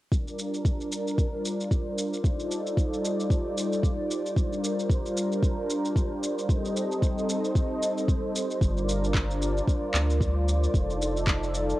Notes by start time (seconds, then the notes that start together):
0.12 G3 D4 F4 A#4 C5 D5, kick, shaker
0.28 shaker
0.39 shaker
0.54 shaker
0.65 kick, shaker
0.81 shaker
0.92 shaker
1.07 shaker
1.18 kick, shaker
1.45 shaker
1.60 shaker
1.71 kick, shaker
1.98 shaker
2.14 shaker
2.24 D#4 A4, kick, shaker
2.40 shaker
2.51 shaker
2.67 shaker
2.77 kick, shaker
2.93 shaker
3.05 shaker
3.20 shaker
3.30 kick, shaker
3.58 shaker
3.73 shaker
3.83 kick, shaker
4.11 shaker
4.26 shaker
4.36 D4 A#4, kick, shaker
4.53 shaker
4.64 shaker
4.79 shaker
4.90 kick, shaker
5.06 shaker
5.17 shaker
5.32 shaker
5.43 kick, shaker
5.70 shaker
5.85 shaker
5.96 kick, shaker
6.23 shaker
6.39 shaker
6.49 C4 D#4 A4 D#5, kick, shaker
6.65 shaker
6.76 shaker
6.92 shaker
7.02 kick, shaker
7.18 shaker
7.29 shaker
7.44 shaker
7.55 kick, shaker
7.83 shaker
7.98 shaker
8.08 kick, shaker
8.36 shaker
8.51 shaker
8.61 G1 D4 F4 A#4 D5, kick, shaker
8.77 shaker
8.89 shaker
9.04 shaker
9.14 kick, clap, shaker
9.31 shaker
9.42 shaker
9.57 shaker
9.68 kick, shaker
9.94 D2, clap, shaker
10.10 shaker
10.21 kick, shaker
10.48 shaker
10.63 shaker
10.74 F1 D#4 A4, kick, shaker
10.90 shaker
11.02 shaker
11.17 shaker
11.27 kick, clap, shaker
11.43 shaker
11.54 shaker
11.70 shaker